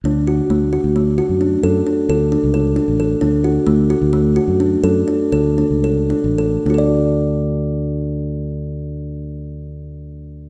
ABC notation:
X:1
M:7/8
L:1/16
Q:1/4=125
K:D
V:1 name="Kalimba"
D2 F2 A,2 F2 A,2 F2 D2 | A2 D2 A2 D2 A2 D2 A2 | D2 F2 A,2 F2 A,2 F2 D2 | A2 D2 A2 D2 A2 D2 A2 |
[DFAd]12- [DFAd]2- | [DFAd]12- [DFAd]2 |]
V:2 name="Fingered electric bass" clef=bass
D,,4 D,,3 D,,4 F,,3 | F,,2 z2 D,,3 C,,4 A,,,3 | D,,4 D,,3 D,,4 F,,3 | F,,2 z2 D,,3 C,,4 A,,,3 |
D,,12- D,,2- | D,,12- D,,2 |]